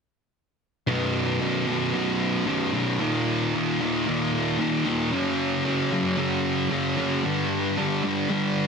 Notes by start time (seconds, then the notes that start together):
0.87 B1 F#2 B2
1.40 B1 F#2 B2
1.66 B1 F#2 B2
1.93 B1 F#2 B2
2.46 B1 F#2 B2
2.73 B1 F#2 B2
3.00 D#2 A#2 D#3
3.54 D#2 A#2 D#3
3.80 D#2 A#2 D#3
4.06 D#2 A#2 D#3
4.59 D#2 A#2 D#3
4.86 D#2 A#2 D#3
5.11 F#2 C#3 F#3
5.64 F#2 C#3 F#3
5.92 F#2 C#3 F#3
6.17 F#2 C#3 F#3
6.70 F#2 C#3 F#3
6.97 F#2 C#3 F#3
7.24 G2 D3 G3
7.77 G2 D3 G3
8.02 G2 D3 G3
8.29 G2 D3 G3